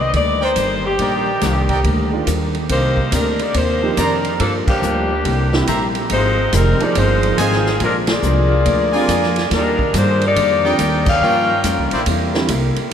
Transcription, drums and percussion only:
0.14 kick, ride
0.56 kick, hi-hat pedal, ride
0.99 kick, ride
1.41 kick, snare, hi-hat pedal, ride
1.69 kick, ride
1.84 kick, ride
2.27 kick, hi-hat pedal, ride
2.55 ride
2.69 kick, ride
2.97 kick
3.12 kick, hi-hat pedal, ride
3.39 ride
3.54 kick, ride
3.97 kick, hi-hat pedal, ride
4.25 ride
4.40 kick, ride
4.68 kick, crash
4.82 hi-hat pedal
5.25 kick, ride
5.53 snare
5.67 kick, hi-hat pedal, ride
5.95 ride
6.10 kick, ride
6.53 kick, hi-hat pedal, ride
6.80 ride
6.95 kick, ride
7.23 ride
7.38 kick, hi-hat pedal, ride
7.53 snare
7.66 snare
7.80 kick, ride
8.07 snare, ride
8.23 hi-hat pedal
8.66 kick, ride
9.09 kick, hi-hat pedal, ride
9.23 snare
9.36 snare, ride
9.51 kick, snare, ride
9.79 kick
9.94 kick, hi-hat pedal, ride
10.21 ride
10.36 kick, ride
10.79 kick, hi-hat pedal, ride
11.06 kick, crash
11.64 kick, hi-hat pedal, ride
11.91 ride
12.06 kick, ride
12.34 snare
12.48 kick, hi-hat pedal, ride
12.76 ride

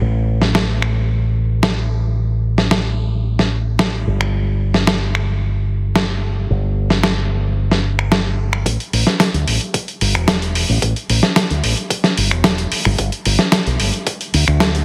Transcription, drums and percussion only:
0.42 snare
0.55 snare
0.82 finger snap
1.63 snare
2.58 snare
2.71 snare
3.39 snare
3.79 snare
4.21 finger snap
4.74 snare
4.87 snare
5.15 finger snap
5.96 snare
6.90 snare
7.03 snare
7.71 snare
7.99 finger snap
8.12 snare
8.53 finger snap
8.66 kick, closed hi-hat
8.80 closed hi-hat
8.93 open hi-hat
9.07 snare, closed hi-hat
9.20 kick, snare, closed hi-hat
9.34 closed hi-hat
9.48 open hi-hat
9.61 closed hi-hat
9.74 kick, closed hi-hat
9.88 closed hi-hat
10.01 open hi-hat
10.15 finger snap
10.28 kick, snare, closed hi-hat
10.42 closed hi-hat
10.55 open hi-hat
10.82 kick, closed hi-hat
10.96 closed hi-hat
11.10 open hi-hat
11.23 snare
11.36 kick, snare, closed hi-hat
11.50 closed hi-hat
11.64 open hi-hat
11.77 closed hi-hat
11.90 kick, closed hi-hat
12.04 snare, closed hi-hat
12.18 open hi-hat
12.31 finger snap, closed hi-hat
12.44 kick, snare, closed hi-hat
12.58 closed hi-hat
12.72 open hi-hat
12.85 finger snap
12.98 kick, closed hi-hat
13.12 closed hi-hat
13.25 open hi-hat
13.39 snare
13.52 kick, snare, closed hi-hat
13.67 closed hi-hat
13.80 open hi-hat
13.94 closed hi-hat
14.07 kick, closed hi-hat
14.21 closed hi-hat
14.34 open hi-hat
14.48 finger snap
14.60 kick, snare, closed hi-hat
14.75 closed hi-hat

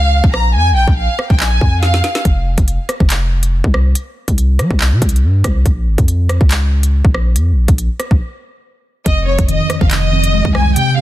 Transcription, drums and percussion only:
0.24 kick
0.34 cross-stick
0.88 kick
1.19 cross-stick
1.30 kick
1.40 clap
1.61 kick
1.83 snare
1.94 snare
2.04 snare
2.15 snare
2.25 kick, closed hi-hat
2.58 kick, closed hi-hat
2.68 closed hi-hat
2.89 cross-stick, closed hi-hat
3.00 kick
3.10 clap, closed hi-hat
3.43 closed hi-hat
3.64 kick
3.74 cross-stick
3.95 closed hi-hat
4.28 kick, closed hi-hat
4.38 closed hi-hat
4.59 cross-stick, closed hi-hat
4.71 kick
4.80 clap
5.02 kick, closed hi-hat
5.09 closed hi-hat
5.16 closed hi-hat
5.44 kick, cross-stick, closed hi-hat
5.66 kick, closed hi-hat
5.98 kick, closed hi-hat
6.08 closed hi-hat
6.29 cross-stick, closed hi-hat
6.41 kick
6.51 clap, closed hi-hat
6.83 closed hi-hat
7.05 kick
7.14 cross-stick
7.36 closed hi-hat
7.68 kick, closed hi-hat
7.78 closed hi-hat
8.00 cross-stick, closed hi-hat
8.11 kick
9.06 kick, closed hi-hat
9.38 kick, closed hi-hat
9.49 closed hi-hat
9.70 cross-stick, closed hi-hat
9.81 kick
9.91 clap, closed hi-hat
10.24 closed hi-hat
10.45 kick
10.55 cross-stick
10.76 closed hi-hat

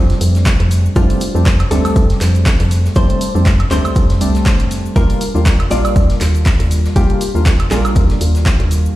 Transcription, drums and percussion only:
0.10 snare, closed hi-hat
0.21 open hi-hat, shaker
0.35 snare, closed hi-hat, shaker
0.45 kick, snare, clap, closed hi-hat, shaker
0.47 shaker
0.60 closed hi-hat
0.71 open hi-hat, shaker
0.86 shaker
0.96 kick, closed hi-hat, shaker
1.10 closed hi-hat
1.20 open hi-hat, shaker
1.36 shaker
1.46 kick, snare, clap, closed hi-hat, shaker
1.60 closed hi-hat, high woodblock
1.71 open hi-hat, shaker
1.85 closed hi-hat, high woodblock, shaker
1.96 kick, closed hi-hat, shaker
2.10 snare, closed hi-hat
2.21 snare, clap, open hi-hat, shaker
2.35 closed hi-hat, shaker
2.46 kick, snare, clap, closed hi-hat, shaker
2.60 closed hi-hat
2.71 open hi-hat, shaker
2.85 snare, shaker
2.95 kick, closed hi-hat, shaker
3.10 closed hi-hat
3.21 open hi-hat, shaker
3.36 shaker
3.46 kick, snare, clap, closed hi-hat, shaker
3.60 closed hi-hat, high woodblock
3.71 clap, open hi-hat, shaker
3.85 closed hi-hat, high woodblock, shaker
3.96 kick, closed hi-hat, shaker
4.10 snare, closed hi-hat
4.21 open hi-hat, shaker
4.35 snare, closed hi-hat, shaker
4.46 kick, snare, clap, closed hi-hat, shaker
4.60 closed hi-hat
4.71 open hi-hat, shaker
4.86 shaker
4.96 kick, closed hi-hat, shaker
5.10 closed hi-hat
5.21 open hi-hat, shaker
5.36 shaker
5.46 kick, snare, clap, closed hi-hat, shaker
5.60 closed hi-hat, high woodblock
5.71 open hi-hat, shaker
5.85 closed hi-hat, high woodblock, shaker
5.96 kick, closed hi-hat, shaker
6.10 snare, closed hi-hat
6.21 snare, clap, open hi-hat, shaker
6.35 closed hi-hat, shaker
6.46 kick, snare, clap, closed hi-hat, shaker
6.60 closed hi-hat
6.71 open hi-hat, shaker
6.84 snare, shaker
6.96 kick, closed hi-hat, shaker
7.10 closed hi-hat
7.21 open hi-hat, shaker
7.36 shaker
7.45 kick, snare, clap, closed hi-hat, shaker
7.60 closed hi-hat, high woodblock
7.71 clap, open hi-hat, shaker
7.85 closed hi-hat, high woodblock, shaker
7.96 kick, closed hi-hat, shaker
8.10 snare, closed hi-hat
8.21 open hi-hat, shaker
8.35 snare, closed hi-hat, shaker
8.46 kick, snare, clap, closed hi-hat, shaker
8.60 closed hi-hat
8.71 open hi-hat, shaker
8.86 shaker

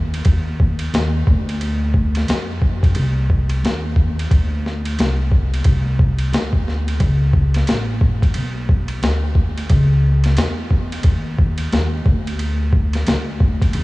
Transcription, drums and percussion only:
0.14 ride
0.25 kick, ride
0.60 kick
0.79 ride
0.94 snare, hi-hat pedal, ride
1.27 kick
1.49 ride
1.61 ride
1.94 kick
2.15 snare, ride
2.28 snare, hi-hat pedal, ride
2.62 kick
2.83 kick, ride
2.95 ride
3.30 kick
3.49 ride
3.65 snare, hi-hat pedal, ride
3.96 kick
4.19 ride
4.31 kick, ride
4.66 snare
4.85 ride
4.99 snare, hi-hat pedal, ride
5.32 kick
5.54 ride
5.64 kick, ride
5.99 kick
6.18 ride
6.33 snare, hi-hat pedal, ride
6.53 kick
6.68 snare
6.88 ride
7.00 kick, ride
7.33 kick
7.54 snare, ride
7.67 snare, hi-hat pedal, ride
8.01 kick
8.22 kick, ride
8.34 ride
8.69 kick
8.88 ride
9.03 snare, hi-hat pedal, ride
9.35 kick
9.58 ride
9.70 kick, ride
10.24 snare, ride
10.37 snare, hi-hat pedal, ride
10.71 kick
10.92 ride
11.03 kick, ride
11.39 kick
11.58 ride
11.72 snare, hi-hat pedal, ride
12.06 kick
12.27 ride
12.39 ride
12.73 kick
12.93 snare, ride
13.07 snare, hi-hat pedal, ride
13.40 kick
13.62 kick, ride
13.73 ride

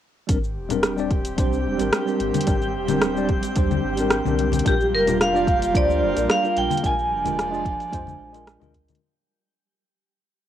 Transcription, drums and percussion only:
0.29 kick, closed hi-hat, cabasa
0.44 cabasa
0.70 closed hi-hat, low conga, cabasa
0.83 cross-stick, closed hi-hat, cabasa
0.98 cabasa
1.11 kick, closed hi-hat
1.25 closed hi-hat, cabasa
1.38 kick, closed hi-hat, cabasa
1.53 cabasa
1.79 closed hi-hat, cabasa
1.93 cross-stick, closed hi-hat, cabasa
2.08 cabasa
2.20 closed hi-hat
2.34 closed hi-hat, high conga, cabasa
2.41 closed hi-hat
2.47 kick, closed hi-hat, cabasa
2.62 cabasa
2.88 closed hi-hat, high conga, low conga, cabasa
3.02 cross-stick, closed hi-hat, cabasa
3.17 cabasa
3.29 kick, closed hi-hat
3.43 closed hi-hat, cabasa
3.56 kick, closed hi-hat, cabasa
3.71 high conga, cabasa
3.97 closed hi-hat, cabasa
4.10 cross-stick, closed hi-hat, cabasa
4.25 high conga, low conga, cabasa
4.39 closed hi-hat
4.52 closed hi-hat, high conga, low conga, cabasa
4.59 closed hi-hat
4.66 kick, closed hi-hat, cabasa
4.81 cabasa
5.07 closed hi-hat, low conga, cabasa
5.21 cross-stick, closed hi-hat, cabasa
5.36 cabasa
5.47 kick, closed hi-hat
5.62 closed hi-hat, cabasa
5.75 kick, closed hi-hat, cabasa
5.90 cabasa
6.17 closed hi-hat, cabasa
6.30 cross-stick, closed hi-hat, cabasa
6.45 cabasa
6.57 closed hi-hat
6.70 closed hi-hat, high conga, cabasa
6.77 closed hi-hat
6.84 kick, closed hi-hat, cabasa
6.99 cabasa
7.25 closed hi-hat, high conga, low conga, cabasa
7.39 cross-stick, closed hi-hat, cabasa
7.54 cabasa
7.65 kick, closed hi-hat
7.80 closed hi-hat, cabasa
7.93 kick, closed hi-hat, cabasa
8.07 high conga, cabasa
8.34 closed hi-hat, cabasa
8.47 cross-stick, closed hi-hat, cabasa
8.61 high conga, low conga, cabasa
8.74 kick, closed hi-hat
8.88 closed hi-hat, high conga, low conga, cabasa
8.95 closed hi-hat

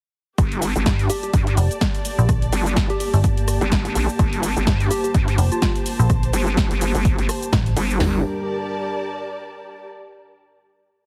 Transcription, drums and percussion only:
0.38 kick, cross-stick, closed hi-hat, shaker
0.52 closed hi-hat
0.62 open hi-hat, shaker
0.76 closed hi-hat, shaker
0.86 kick, snare, closed hi-hat, shaker
0.99 closed hi-hat
1.10 open hi-hat, shaker
1.23 closed hi-hat, shaker
1.33 kick, closed hi-hat, shaker
1.47 closed hi-hat
1.57 open hi-hat, shaker
1.71 closed hi-hat, shaker
1.81 kick, snare, closed hi-hat, shaker
1.95 closed hi-hat
2.05 open hi-hat, shaker
2.19 shaker
2.29 kick, cross-stick, closed hi-hat, shaker
2.42 closed hi-hat
2.53 open hi-hat, shaker
2.66 closed hi-hat, shaker
2.76 kick, snare, closed hi-hat, shaker
2.90 closed hi-hat
3.00 open hi-hat, shaker
3.14 open hi-hat, shaker
3.24 kick, closed hi-hat, shaker
3.37 closed hi-hat
3.48 cross-stick, open hi-hat, shaker
3.61 closed hi-hat, shaker
3.72 kick, snare, closed hi-hat, shaker
3.85 closed hi-hat
3.95 open hi-hat, shaker
4.09 shaker
4.19 kick, cross-stick, closed hi-hat, shaker
4.33 closed hi-hat
4.43 open hi-hat, shaker
4.57 closed hi-hat, shaker
4.67 kick, snare, closed hi-hat, shaker
4.80 closed hi-hat
4.91 open hi-hat, shaker
5.04 closed hi-hat, shaker
5.14 kick, closed hi-hat, shaker
5.28 closed hi-hat
5.38 open hi-hat, shaker
5.52 closed hi-hat, shaker
5.62 kick, snare, closed hi-hat, shaker
5.76 closed hi-hat
5.86 open hi-hat, shaker
6.00 shaker
6.10 kick, cross-stick, closed hi-hat, shaker
6.23 closed hi-hat
6.33 open hi-hat, shaker
6.47 closed hi-hat, shaker
6.57 kick, snare, closed hi-hat, shaker
6.71 closed hi-hat
6.81 open hi-hat, shaker
6.95 open hi-hat, shaker
7.05 kick, closed hi-hat, shaker
7.19 closed hi-hat
7.29 cross-stick, open hi-hat, shaker
7.42 closed hi-hat, shaker
7.53 kick, snare, closed hi-hat, shaker
7.66 closed hi-hat
7.77 open hi-hat, shaker
7.90 shaker
8.00 snare, floor tom, open hi-hat

